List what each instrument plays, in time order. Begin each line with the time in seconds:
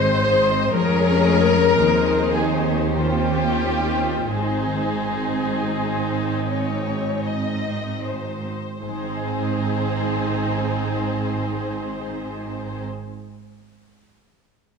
Already playing: double bass section G#1, cello section G#2, harp G#2 D#3 D#4 D#5, french horn section G#3 C4, viola section C4 C5, violin section C5 D#5
0.22 harp C4, viola section D#4 G#4, violin section C5
0.48 viola section C4 C5, harp D#4, violin section D#5
0.73 double bass section F1, cello section F2, harp F3, french horn section G#3 C#4, viola section C#4 G#4, violin section A#4 C#5
1.00 harp C#4
1.25 harp G#4
1.52 harp C#4
1.77 double bass section D#2, cello section D#2, harp D#3, french horn section C4 D#4, viola section D#4 G#4, violin section C5
2.06 harp C4
2.33 harp D#4, viola section G4, violin section G#4
2.64 harp G#4
2.93 harp D#3, viola section F4, violin section G4 C5
2.98 viola section C#4
3.28 harp A#3
3.61 harp C4
3.95 harp D#4
4.27 double bass section G#1, cello section G#2, harp G#2, french horn section C4 D#4, viola section C4 D#4, violin section G#4 C5
4.66 harp D#3
5.02 harp C4
5.39 harp D#4
5.75 harp G#4, violin section C5
6.12 harp C5
6.48 violin section C#5, harp D#5
6.87 harp G#5
7.24 violin section D#5, harp D#5
7.64 harp C5
8.04 harp G#4, violin section C5
8.44 harp C4
8.79 double bass section G#1, cello section G#2, harp G#2, french horn section C4 D#4, viola section C4 D#4, violin section C5
8.83 violin section G#4
8.88 harp G#3
8.95 harp C4
9.02 harp D#4
9.09 harp G#4
9.16 harp D#5